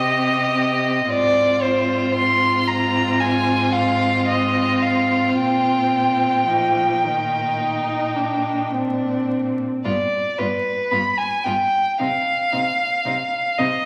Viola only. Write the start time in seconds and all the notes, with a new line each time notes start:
Already playing: C4
1.10 C4
6.49 F3
7.04 D#3
7.60 D#4
8.16 D4
8.72 C4
9.85 B3
10.39 B3
10.91 B3
11.45 B3
11.99 C4
12.53 C4
13.05 C4
13.59 C4